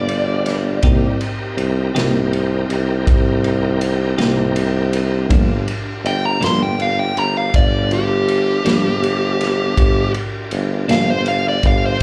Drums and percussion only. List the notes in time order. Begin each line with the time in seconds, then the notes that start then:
0.09 ride
0.46 snare, ride
0.83 kick, ride
1.21 ride
1.58 ride
1.96 snare, ride
2.33 ride
2.70 ride
3.07 kick, ride
3.44 ride
3.81 ride
4.18 snare, ride
4.56 ride
4.93 ride
5.30 kick, ride
5.68 ride
6.06 ride
6.42 snare, ride
6.80 ride
7.17 ride
7.54 kick, ride
7.91 ride
8.28 ride
8.66 snare, ride
9.04 ride
9.41 snare, ride
9.78 kick, ride
10.14 ride
10.51 ride
10.89 snare, ride
11.26 ride
11.63 kick, ride